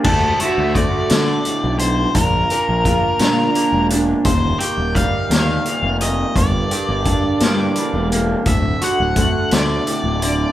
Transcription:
0.04 D2 A3 D4 F#4 A4, kick, crash
0.40 F#4 E5, closed hi-hat
0.58 D2
0.75 A3 D5, kick, closed hi-hat
1.09 D3, snare, closed hi-hat
1.45 A2, closed hi-hat
1.64 B1
1.79 D3 C5, closed hi-hat
2.15 A#1 A#2 A#3 F4 A#4, kick, closed hi-hat
2.50 A#4, closed hi-hat
2.69 A#1
2.85 F4, kick, closed hi-hat
3.19 A#2 D4, snare, closed hi-hat
3.55 A#3, closed hi-hat
3.72 E1
3.90 D4, closed hi-hat
4.25 D#1 D#2 D#4 G4 C5, kick, closed hi-hat
4.59 G4 G5, closed hi-hat
4.78 D#1
4.95 G3 F5, kick, closed hi-hat
5.30 D#2 D#3, snare, closed hi-hat
5.66 A#2, closed hi-hat
5.83 F1
6.01 D#3 D#5, closed hi-hat
6.36 G1 G2 D4 A4 D5, kick, closed hi-hat
6.71 G4, closed hi-hat
6.89 G1
7.05 D4, kick, closed hi-hat
7.40 G2 A#3, snare, closed hi-hat
7.76 G3, closed hi-hat
7.94 E1
8.12 A#3, closed hi-hat
8.46 D1 D2 A3 F#4 E5, kick, closed hi-hat
8.81 F#4 F#5, closed hi-hat
9.00 D1
9.16 A3, kick, closed hi-hat
9.51 D2 D3 D5, snare, closed hi-hat
9.87 A2, closed hi-hat
10.04 D1
10.22 D3 D5, closed hi-hat

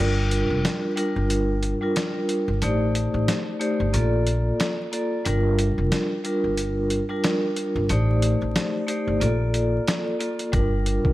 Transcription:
Already playing: G3 D4
0.00 G1 F4 A#4
0.31 closed hi-hat
0.50 F1
0.65 snare, closed hi-hat
0.96 G3 D4 F4 A#4, closed hi-hat
1.16 G1
1.30 closed hi-hat
1.63 closed hi-hat
1.81 G3 D4 F4 A#4
1.96 snare, closed hi-hat
2.29 closed hi-hat
2.48 G1
2.62 A1 A3 D#4 G4 C5 D5, closed hi-hat
2.95 closed hi-hat
3.14 A1
3.28 snare, closed hi-hat
3.60 A3 D#4 G4 C5 D5, closed hi-hat
3.80 G1
3.93 A#1 A#3 F4 A4 D5, closed hi-hat
4.27 closed hi-hat
4.60 snare, closed hi-hat
4.92 A#3 F4 A4 D5, closed hi-hat
5.25 G1 G3 D4 F4 A#4, closed hi-hat
5.59 closed hi-hat
5.78 F1
5.92 snare, closed hi-hat
6.24 G3 D4 F4 A#4, closed hi-hat
6.44 G1
6.57 closed hi-hat
6.90 closed hi-hat
7.09 G3 D4 F4 A#4
7.24 snare, closed hi-hat
7.56 closed hi-hat
7.75 G1
7.89 A1 A3 D#4 G4 C5 D5, closed hi-hat
8.22 closed hi-hat
8.42 A1
8.56 snare, closed hi-hat
8.87 A3 D#4 G4 C5 D5, closed hi-hat
9.07 G1
9.20 A#1 A#3 F4 A4 D5, closed hi-hat
9.54 closed hi-hat
9.87 snare, closed hi-hat
10.19 A#3 F4 A4 D5, closed hi-hat
10.39 closed hi-hat
10.52 G1 G3 D4 F4 A#4, kick, closed hi-hat
10.86 closed hi-hat
11.05 F1, kick

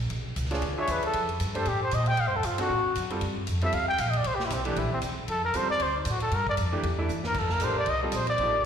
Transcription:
0.10 B1, kick, ride
0.36 C#2, kick, hi-hat pedal, ride
0.45 snare
0.51 D4 F4 G#4 C#5, snare, ride
0.62 D2, kick, ride
0.77 D4 F4 G#4 C#5 E5
0.87 E2 B4, kick, hi-hat pedal, ride
1.03 A4, muted upright bass stroke, ride
1.13 F2, kick, ride
1.29 ride
1.40 G2, kick, hi-hat pedal, ride
1.55 A3 D4 G4 A4 C5, ride
1.65 A2 G4, kick, ride
1.83 C5
1.91 A#2 D#5, kick, hi-hat pedal, ride
2.06 G5, ride
2.17 A2 F5, kick, ride
2.27 G2 C5
2.36 D#2 A4
2.43 G2 F4, kick, hi-hat pedal, ride
2.58 C4 D4 F#4 A4, ride
2.70 A2, kick
2.85 muted upright bass stroke
2.95 F#2, kick, hi-hat pedal, ride
3.10 G3 C4 F4 A4, ride
3.21 G2, kick, ride
3.47 F2, kick, hi-hat pedal, ride
3.61 G3 C4 F4 A4 E5, ride
3.72 D2 F5, kick, ride
3.88 G5, muted upright bass stroke
3.98 A#1 F5, kick, hi-hat pedal, ride
4.10 D#5, ride
4.17 D5
4.24 C2 C5, kick, ride
4.35 G4
4.40 snare
4.45 E4
4.50 B1 C4, kick, hi-hat pedal, ride
4.65 E3 A3 D4 G4, ride
4.76 A#1 E4, kick, ride
4.92 C4, muted upright bass stroke
5.01 C2, kick, hi-hat pedal, ride
5.18 muted upright bass stroke
5.28 F2 A4, kick, ride
5.45 A#4
5.54 D#2 G3 C4 F4 A4 C5, kick, hi-hat pedal, ride
5.70 D5
5.79 D2 C5, kick, ride
5.97 D#4
6.05 A2, kick, hi-hat pedal, ride
6.10 F#4
6.20 A4, ride
6.31 G2 A#4, kick, ride
6.47 D5, kick
6.57 F2, kick, hi-hat pedal, ride
6.72 E3 A3 D4 G4
6.83 E2, kick, ride
6.98 E3 A3 D4 E4
7.09 G2, hi-hat pedal
7.24 A#4, snare
7.34 F2, kick, crash
7.39 A4
7.49 A#4, snare
7.60 A1 A3 D4 G4 A#4, kick, hi-hat pedal, ride
7.64 C5
7.78 D5
7.86 C2 D#5, kick, ride
8.03 G3 C4 F4 G4 A4
8.12 A#1 C5, kick, hi-hat pedal, ride
8.27 D5, ride
8.38 A1 F3 A#3 D#4 G4, kick, ride

